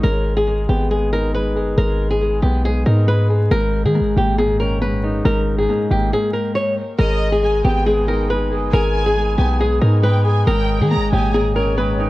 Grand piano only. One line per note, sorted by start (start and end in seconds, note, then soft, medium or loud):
0.03 0.46 G#3 medium
0.47 0.90 G#3 medium
0.69 1.78 B3 medium
0.91 1.33 G#3 medium
1.13 2.21 D#4 medium
1.34 1.76 G#3 medium
1.55 2.64 G#4 medium
1.77 2.19 G#3 loud
2.21 2.63 G#3 medium
2.43 3.52 B3 medium
2.64 3.06 G#3 medium
2.86 3.51 D#4 medium
3.08 3.51 G#3 medium
3.30 3.51 G#4 medium
3.51 3.94 G#2 medium
3.95 4.37 G#2 medium
4.17 5.25 A#2 medium
4.38 4.81 G#2 medium
4.60 5.69 C#4 medium
4.82 5.23 G#2 medium
5.04 6.12 D#4 medium
5.25 5.68 G#2 medium
5.69 6.78 G#2 medium
5.90 6.99 A#3 medium
6.99 7.41 G#3 medium
7.43 7.85 G#3 medium
7.65 8.73 B3 medium
7.87 8.28 G#3 loud
8.08 9.17 D#4 medium
8.30 8.71 G#3 medium
8.51 9.60 G#4 medium
8.73 9.15 G#3 medium
9.17 9.58 G#3 medium
9.39 10.47 B3 medium
9.60 10.02 G#3 medium
9.82 10.47 D#4 medium
10.04 10.47 G#3 medium
10.25 10.47 G#4 medium
10.47 10.89 G#2 loud
10.91 11.33 G#2 medium
11.13 12.10 A#2 medium
11.34 11.76 G#2 medium
11.56 12.10 C#4 medium
11.78 12.10 G#2 medium
11.99 12.10 D#4 medium